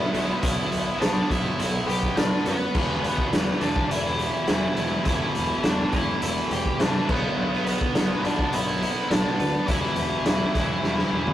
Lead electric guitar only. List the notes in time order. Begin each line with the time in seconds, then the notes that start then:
Already playing: E4 E5
0.42 E4 E5
1.01 D4 D5
1.31 E4 E5
1.60 E4 E5
1.88 G4 G5
2.17 D4 D5
2.48 B3 B4
3.06 B3 B4
3.61 D4 D5
3.91 E4 E5
5.08 E4 E5
5.66 D4 D5
5.95 E4 E5
6.26 E4 E5
6.53 G4 G5
6.81 D4 D5
7.09 B3 B4
7.68 B3 B4
8.24 D4 D5
8.53 E4 E5
9.10 D4 D5
9.68 E4 E5